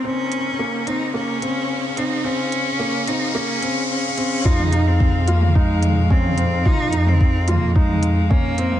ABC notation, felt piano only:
X:1
M:4/4
L:1/8
Q:1/4=109
K:Fm
V:1 name="Felt piano"
C2 B, C B, C2 C | C2 B, C B, C2 C | F E2 F E2 D C | F E2 F E2 D C |]